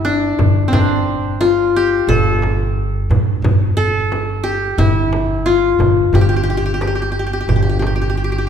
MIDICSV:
0, 0, Header, 1, 5, 480
1, 0, Start_track
1, 0, Tempo, 675676
1, 1484, Time_signature, 4, 2, 24, 8
1, 6033, End_track
2, 0, Start_track
2, 0, Title_t, "Qanun"
2, 0, Program_c, 0, 107
2, 0, Note_on_c, 0, 64, 72
2, 0, Note_on_c, 0, 67, 78
2, 33, Note_on_c, 0, 62, 74
2, 213, Note_off_c, 0, 67, 0
2, 483, Note_on_c, 0, 60, 58
2, 515, Note_off_c, 0, 62, 0
2, 517, Note_on_c, 0, 62, 71
2, 555, Note_off_c, 0, 64, 0
2, 999, Note_on_c, 0, 65, 81
2, 1253, Note_on_c, 0, 67, 75
2, 1482, Note_on_c, 0, 69, 84
2, 1577, Note_off_c, 0, 62, 0
2, 1620, Note_off_c, 0, 60, 0
2, 1956, Note_off_c, 0, 65, 0
2, 2145, Note_off_c, 0, 67, 0
2, 2669, Note_off_c, 0, 69, 0
2, 2677, Note_on_c, 0, 69, 86
2, 3151, Note_on_c, 0, 67, 74
2, 3398, Note_on_c, 0, 64, 80
2, 3518, Note_off_c, 0, 69, 0
2, 3877, Note_on_c, 0, 65, 81
2, 3920, Note_off_c, 0, 64, 0
2, 4043, Note_off_c, 0, 67, 0
2, 4368, Note_on_c, 0, 67, 73
2, 4410, Note_off_c, 0, 67, 0
2, 4413, Note_on_c, 0, 67, 56
2, 4465, Note_off_c, 0, 67, 0
2, 4468, Note_on_c, 0, 67, 60
2, 4518, Note_off_c, 0, 67, 0
2, 4521, Note_on_c, 0, 67, 52
2, 4568, Note_off_c, 0, 67, 0
2, 4571, Note_on_c, 0, 67, 59
2, 4614, Note_off_c, 0, 67, 0
2, 4617, Note_on_c, 0, 67, 52
2, 4666, Note_off_c, 0, 67, 0
2, 4669, Note_on_c, 0, 67, 59
2, 4726, Note_off_c, 0, 67, 0
2, 4729, Note_on_c, 0, 67, 47
2, 4785, Note_off_c, 0, 67, 0
2, 4788, Note_on_c, 0, 67, 53
2, 4834, Note_off_c, 0, 65, 0
2, 4841, Note_off_c, 0, 67, 0
2, 4843, Note_on_c, 0, 67, 46
2, 4880, Note_off_c, 0, 67, 0
2, 4883, Note_on_c, 0, 67, 52
2, 4937, Note_off_c, 0, 67, 0
2, 4940, Note_on_c, 0, 67, 45
2, 4984, Note_off_c, 0, 67, 0
2, 4986, Note_on_c, 0, 67, 46
2, 5053, Note_off_c, 0, 67, 0
2, 5056, Note_on_c, 0, 67, 45
2, 5107, Note_off_c, 0, 67, 0
2, 5110, Note_on_c, 0, 67, 46
2, 5158, Note_off_c, 0, 67, 0
2, 5161, Note_on_c, 0, 67, 42
2, 5207, Note_off_c, 0, 67, 0
2, 5210, Note_on_c, 0, 67, 46
2, 5258, Note_off_c, 0, 67, 0
2, 5261, Note_on_c, 0, 67, 42
2, 5316, Note_off_c, 0, 67, 0
2, 5319, Note_on_c, 0, 67, 46
2, 5367, Note_off_c, 0, 67, 0
2, 5370, Note_on_c, 0, 67, 44
2, 5414, Note_off_c, 0, 67, 0
2, 5417, Note_on_c, 0, 67, 47
2, 5463, Note_off_c, 0, 67, 0
2, 5466, Note_on_c, 0, 67, 43
2, 5534, Note_off_c, 0, 67, 0
2, 5536, Note_on_c, 0, 67, 47
2, 5585, Note_off_c, 0, 67, 0
2, 5588, Note_on_c, 0, 67, 41
2, 5650, Note_off_c, 0, 67, 0
2, 5653, Note_on_c, 0, 67, 48
2, 5692, Note_off_c, 0, 67, 0
2, 5694, Note_on_c, 0, 67, 41
2, 5749, Note_off_c, 0, 67, 0
2, 5751, Note_on_c, 0, 67, 50
2, 5804, Note_off_c, 0, 67, 0
2, 5806, Note_on_c, 0, 67, 44
2, 5853, Note_off_c, 0, 67, 0
2, 5856, Note_on_c, 0, 67, 48
2, 5907, Note_off_c, 0, 67, 0
2, 5910, Note_on_c, 0, 67, 47
2, 5953, Note_off_c, 0, 67, 0
2, 5956, Note_on_c, 0, 67, 47
2, 6013, Note_off_c, 0, 67, 0
2, 6033, End_track
3, 0, Start_track
3, 0, Title_t, "Upright bass"
3, 0, Program_c, 1, 32
3, 0, Note_on_c, 1, 31, 71
3, 251, Note_off_c, 1, 31, 0
3, 273, Note_on_c, 1, 31, 70
3, 499, Note_off_c, 1, 31, 0
3, 513, Note_on_c, 1, 31, 73
3, 1450, Note_off_c, 1, 31, 0
3, 1472, Note_on_c, 1, 31, 84
3, 2170, Note_off_c, 1, 31, 0
3, 2200, Note_on_c, 1, 43, 71
3, 2423, Note_off_c, 1, 43, 0
3, 2431, Note_on_c, 1, 31, 79
3, 3370, Note_off_c, 1, 31, 0
3, 3394, Note_on_c, 1, 31, 80
3, 4090, Note_off_c, 1, 31, 0
3, 4112, Note_on_c, 1, 31, 71
3, 4338, Note_off_c, 1, 31, 0
3, 4352, Note_on_c, 1, 31, 84
3, 5288, Note_off_c, 1, 31, 0
3, 5312, Note_on_c, 1, 31, 79
3, 6007, Note_off_c, 1, 31, 0
3, 6033, End_track
4, 0, Start_track
4, 0, Title_t, "Darbuka"
4, 280, Note_on_c, 9, 64, 70
4, 351, Note_off_c, 9, 64, 0
4, 403, Note_on_c, 9, 62, 22
4, 474, Note_off_c, 9, 62, 0
4, 528, Note_on_c, 9, 64, 70
4, 599, Note_off_c, 9, 64, 0
4, 1006, Note_on_c, 9, 63, 56
4, 1077, Note_off_c, 9, 63, 0
4, 1127, Note_on_c, 9, 62, 23
4, 1198, Note_off_c, 9, 62, 0
4, 1483, Note_on_c, 9, 64, 81
4, 1554, Note_off_c, 9, 64, 0
4, 1721, Note_on_c, 9, 63, 62
4, 1792, Note_off_c, 9, 63, 0
4, 2208, Note_on_c, 9, 64, 73
4, 2279, Note_off_c, 9, 64, 0
4, 2450, Note_on_c, 9, 64, 71
4, 2521, Note_off_c, 9, 64, 0
4, 2931, Note_on_c, 9, 63, 53
4, 3002, Note_off_c, 9, 63, 0
4, 3052, Note_on_c, 9, 62, 22
4, 3123, Note_off_c, 9, 62, 0
4, 3408, Note_on_c, 9, 64, 70
4, 3479, Note_off_c, 9, 64, 0
4, 3644, Note_on_c, 9, 63, 60
4, 3715, Note_off_c, 9, 63, 0
4, 4125, Note_on_c, 9, 64, 74
4, 4196, Note_off_c, 9, 64, 0
4, 4250, Note_on_c, 9, 62, 21
4, 4321, Note_off_c, 9, 62, 0
4, 4367, Note_on_c, 9, 64, 70
4, 4438, Note_off_c, 9, 64, 0
4, 4843, Note_on_c, 9, 63, 57
4, 4914, Note_off_c, 9, 63, 0
4, 4964, Note_on_c, 9, 62, 23
4, 5036, Note_off_c, 9, 62, 0
4, 5324, Note_on_c, 9, 64, 78
4, 5395, Note_off_c, 9, 64, 0
4, 5559, Note_on_c, 9, 63, 56
4, 5630, Note_off_c, 9, 63, 0
4, 5801, Note_on_c, 9, 62, 23
4, 5872, Note_off_c, 9, 62, 0
4, 5920, Note_on_c, 9, 62, 24
4, 5991, Note_off_c, 9, 62, 0
4, 6033, End_track
5, 0, Start_track
5, 0, Title_t, "Frame drum"
5, 276, Note_on_c, 9, 64, 74
5, 347, Note_off_c, 9, 64, 0
5, 518, Note_on_c, 9, 64, 78
5, 589, Note_off_c, 9, 64, 0
5, 1002, Note_on_c, 9, 64, 57
5, 1073, Note_off_c, 9, 64, 0
5, 1486, Note_on_c, 9, 64, 71
5, 1557, Note_off_c, 9, 64, 0
5, 1729, Note_on_c, 9, 64, 59
5, 1800, Note_off_c, 9, 64, 0
5, 2207, Note_on_c, 9, 64, 76
5, 2278, Note_off_c, 9, 64, 0
5, 2446, Note_on_c, 9, 64, 85
5, 2517, Note_off_c, 9, 64, 0
5, 2926, Note_on_c, 9, 64, 62
5, 2997, Note_off_c, 9, 64, 0
5, 3402, Note_on_c, 9, 64, 75
5, 3473, Note_off_c, 9, 64, 0
5, 3642, Note_on_c, 9, 64, 61
5, 3713, Note_off_c, 9, 64, 0
5, 4119, Note_on_c, 9, 64, 71
5, 4190, Note_off_c, 9, 64, 0
5, 4361, Note_on_c, 9, 64, 75
5, 4432, Note_off_c, 9, 64, 0
5, 4839, Note_on_c, 9, 64, 65
5, 4910, Note_off_c, 9, 64, 0
5, 5320, Note_on_c, 9, 64, 65
5, 5391, Note_off_c, 9, 64, 0
5, 5558, Note_on_c, 9, 64, 66
5, 5629, Note_off_c, 9, 64, 0
5, 6033, End_track
0, 0, End_of_file